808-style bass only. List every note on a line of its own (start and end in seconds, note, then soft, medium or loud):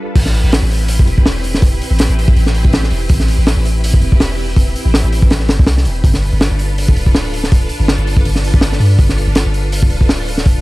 0.16 0.42 A1 loud
0.44 0.60 A1 loud
0.62 1.06 A1 medium
1.07 1.80 E1 loud
1.91 2.07 A1 loud
2.09 2.35 A1 medium
2.36 2.64 A1 loud
2.65 2.90 A1 medium
2.91 3.08 E1 loud
3.10 3.37 A1 loud
3.38 3.55 A1 loud
3.57 4.00 A1 medium
4.02 4.74 E1 loud
4.85 5.02 A1 loud
5.04 5.51 A1 medium
5.49 5.58 G1 medium
5.59 5.87 C2 loud
5.86 6.03 E1 loud
6.04 6.31 G1 loud
6.33 6.49 G1 loud
6.51 6.95 G1 medium
6.96 7.69 D1 loud
7.80 7.96 G1 loud
7.98 8.24 G1 medium
8.25 8.53 G1 loud
8.54 8.79 G1 medium
8.80 8.97 G2 medium
8.99 9.26 G1 medium
9.27 9.43 G1 loud
9.46 9.89 G1 medium
9.91 10.61 D1 loud